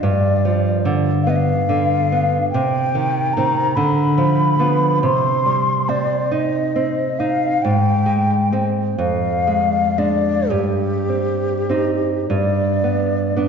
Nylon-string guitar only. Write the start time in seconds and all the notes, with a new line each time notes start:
0.03 G2
0.45 F3
0.85 D3
1.27 B3
1.69 D3
2.12 B3
2.54 C3
2.95 D#3
3.37 D#3 C4
3.77 D3
4.18 F3
4.59 F3 B3
5.03 C3
5.46 G3
5.89 C4
6.31 D#4
6.76 C4
7.20 D#4
7.65 G#2
8.06 G#3
8.52 G#3 C4
8.98 F2
9.47 G#3
9.98 G#3 D4
10.50 G2
11.09 C4
11.69 C4 D#4
12.30 G2
12.84 B3
13.36 B3 D4